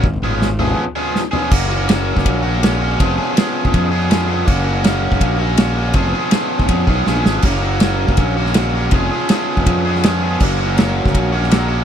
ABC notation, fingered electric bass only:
X:1
M:4/4
L:1/16
Q:1/4=162
K:F#
V:1 name="Fingered electric bass" clef=bass
G,,,2 G,,,6 z8 | F,,,6- F,,, F,,, A,,,8 | E,,,2 z4 z E,,, E,,8 | F,,,6- F,,, F,,, A,,,8 |
E,,,2 z4 z E,,, E,,2 B,,,2 A,,,2 G,,,2 | F,,,6- F,,, F,,, A,,,8 | E,,,2 z4 z E,,, E,,8 | F,,,6- F,,, F,,, A,,,8 |]